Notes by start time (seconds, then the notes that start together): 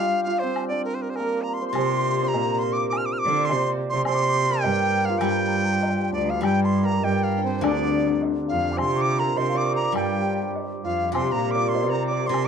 Already playing: G3 D4 G4 A#4 F5
0.00 F4 F5
0.24 F4 F5
0.39 C5
0.43 C4
0.56 high woodblock
0.68 D4 D5
0.85 A#4
0.95 C5
1.02 A#4
1.10 C5
1.16 A#4, high woodblock
1.20 A#3
1.42 A#5
1.54 C6
1.61 C5 C6
1.68 C6
1.73 C3, high woodblock
1.77 C5 C6
2.23 C5
2.28 A#5
2.34 A#2 A#4 A#5, high woodblock, low woodblock
2.59 C6
2.64 C6
2.73 D6
2.78 D6
2.89 D6, high woodblock
2.97 F6
3.06 D6
3.13 F6
3.19 D6
3.25 D3 D5
3.45 C6
3.49 C3 C5, high woodblock, low woodblock
3.90 C3 C5 C6
4.05 C3 C5 C6, high woodblock
4.15 D6
4.23 C6
4.29 D6
4.38 C6
4.50 A#4
4.61 G2 G4 G5, high woodblock, low woodblock
4.65 G5
5.05 F5
5.10 F4
5.18 G2 G3 G5, high woodblock
5.24 G4 G5
5.33 A#5
5.40 G5
5.48 A#5
5.56 G5
5.65 A#5
5.74 G5
5.82 A#5, low woodblock
5.90 G5
6.12 D2 D4 D5
6.29 F5
6.41 G2 G3 G4 G5, high woodblock
6.64 C6
6.77 C6 D6
6.83 A#4 G5 A#5
6.89 F5 D6
6.97 A#5 C6
7.03 G2 G4 G5, low woodblock
7.23 F5
7.38 D4
7.44 C4 C5
7.61 D2 D3 D4 D5, high woodblock
8.08 D4
8.22 low woodblock
8.48 F2 F4 F5
8.72 D6
8.77 C3 C5 C6, high woodblock
8.97 D6
9.02 D6
9.13 C6
9.17 A#4 A#5
9.36 C3 C5 C6, low woodblock
9.49 F5
9.54 D5 D6
9.76 A#5
9.92 G2 G3, high woodblock
9.96 G4 G5
10.42 G4
10.55 low woodblock
10.84 F2 F4 F5
11.12 C3 C5 C6, high woodblock
11.32 A#2 A#5
11.36 A#4
11.51 D6
11.55 D5
11.69 C6
11.73 C3 C5 C6, low woodblock
11.90 A#4 A#5
11.94 A#5
12.07 D5 D6
12.14 D6
12.26 C3 D5 C6
12.31 C3 C5 C6, high woodblock